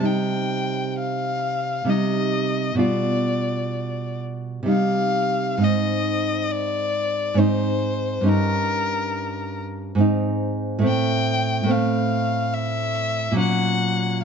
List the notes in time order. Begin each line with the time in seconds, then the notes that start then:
Already playing: C3
0.00 G3 D#4
0.06 G5
0.99 F5
1.85 C3 G3
1.89 D#4 D#5
2.75 B2 G3
2.79 F4 D5
4.63 C3 G3
4.67 D#4 F5
5.58 G#2 C4
5.62 D#4 D#5
6.51 D5
7.34 G#2 C4
7.38 D#4 C5
8.21 G2 C#4
8.26 D#4 A#4
9.95 G#2 C4
10.00 D#4
10.79 A2 A3
10.84 C4
10.88 G5
11.63 A2 A3
11.68 C4 F5
12.54 E5
13.32 A#2 F#3
13.37 C#4 F#5